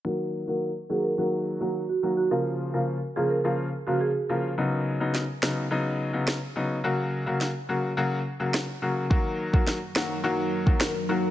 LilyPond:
<<
  \new Staff \with { instrumentName = "Marimba" } { \time 4/4 \key ees \minor \tempo 4 = 106 bes'16 r8 bes'16 r8 aes'16 bes'16 bes'16 r8 ges'16 r16 ges'16 r16 ges'16 | bes'16 r8 bes'16 r8 aes'16 bes'16 bes'16 r8 ges'16 aes'16 r16 bes'16 r16 | r1 | r1 |
r1 | }
  \new Staff \with { instrumentName = "Ambient pad" } { \time 4/4 \key ees \minor r1 | r1 | r1 | r1 |
<ges ees' bes'>1 | }
  \new Staff \with { instrumentName = "Grand piano" } { \clef bass \time 4/4 \key ees \minor <ees ges bes ges'>8. <ees ges bes ges'>16 r8 <ees ges bes ges'>8 <ees ges bes ges'>8. <ees ges bes ges'>16 r8 <ees ges bes ges'>8 | <des f bes f'>8. <des f bes f'>16 r8 <des f bes f'>8 <des f bes f'>8 r16 <des f bes f'>16 r8 <des f bes f'>8 | <cis fis b dis'>8. <cis fis b dis'>16 r8 <cis fis b dis'>8 <cis fis b dis'>8. <cis fis b dis'>16 r8 <cis fis b dis'>8 | <des ges bes ges'>8. <des ges bes ges'>16 r8 <des ges bes ges'>8 <des ges bes ges'>8 r16 <des ges bes ges'>16 r8 <des ges bes ges'>8 |
<ees ges bes ges'>8. <ees ges bes ges'>16 r8 <ees ges bes ges'>8 <ees ges bes ges'>8. <ees ges bes ges'>16 r8 <ees ges bes ges'>8 | }
  \new DrumStaff \with { instrumentName = "Drums" } \drummode { \time 4/4 r4 r4 r4 r4 | r4 r4 r4 r4 | r4 sn8 <ss sn>8 r4 <ss sn>4 | r4 sn4 r4 <ss sn>4 |
bd8. bd16 sn8 <ss sn>8 r8. bd16 <ss sn>4 | }
>>